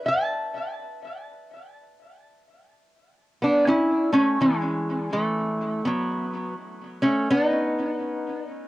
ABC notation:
X:1
M:4/4
L:1/8
Q:"Swing" 1/4=83
K:A
V:1 name="Resonator guitar played with a steel bar"
[ea]6 z2 | z [B,D] [CE] [A,C] [E,G,]2 [E,A,]2 | [F,B,]2 z [A,C] [B,^D]3 z |]